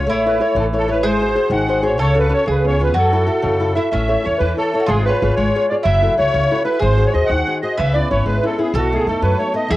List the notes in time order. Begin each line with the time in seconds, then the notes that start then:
0.07 A1 A3 E4 C#5
0.26 E4 A4 B4 C#5
0.40 E4 A4 C#5
0.44 C#5
0.55 A1 E3
0.59 A4
0.73 E4 A4 C#5
0.77 A4
0.88 E4 A4 B4 C#5
1.03 G#1 G#3 G#4 C5
1.21 F#4 G#4 C5
1.35 F#4 G#4 C5
1.50 G#1 D#3 F#5
1.68 F#4 G#4 C5
1.82 F#4 G#4 C5 C#5
1.98 C#2 C#3 A4 C#5
2.14 C#4 F#4 A4
2.19 B4
2.29 C#4 F#4 A4
2.34 C#5
2.46 C#2 C#3 G#4
2.50 B4
2.64 B3 C#4 F4 C#5
2.79 B3 C#4 F4 B4
2.94 F#2 F#3 F#4 A4
3.12 E4 F#4 A4
3.27 E4 F#4 A4
3.42 F#2 C#3
3.60 E4 F#4 A4
3.75 E4 F#4 A4 E5
3.90 A1 A3 C#4 E5
4.08 E4 A4 C#5
4.24 E2 E4 A4 C#5
4.38 E2 E3 B4
4.57 E4 A4 C#5
4.73 E4 A4 C#5
4.80 F#4
4.86 G#1 G#3 F4 G#4
5.05 F4 G#4 B4 C#5
5.22 G#1 F4 G#4 C#5
5.36 G#1 G#3 C#5
5.55 F4 G#4 C#5
5.69 F4 G#4 C#5 D5
5.83 F#1 F#3 E4 E5
6.02 E4 F#4 A4
6.17 C#2 E4 F#4 A4 C#5
6.34 C#2 C#3
6.51 E4 F#4 A4
6.64 E4 F#4 A4 B4
6.79 G#1 G#3 G#4 C5
6.97 F#4 G#4 C5
7.07 C#5
7.13 D#2 F#4 G#4 C5 D#5
7.26 D#2 D#3 F#5
7.47 F#4 G#4 C5
7.62 F#4 G#4 C5 D#5
7.77 C#2 C#3 B4 E5
7.93 B3 C#4 E4 D5
8.10 G#1 B3 C#4 E4 C#5
8.26 G#1 G#3 B4
8.43 B3 C#4 E4 A4
8.58 B3 C#4 E4 G#4
8.74 B1 B2 F#4 A4
8.92 A3 B3 D#4 G#4
9.07 F#2 A3 B3 D#4 A4
9.22 F#2 F#3 B4
9.38 A3 B3 D#4 C#5
9.53 A3 B3 D#4 D#5
9.68 E2 E3 G#4 E5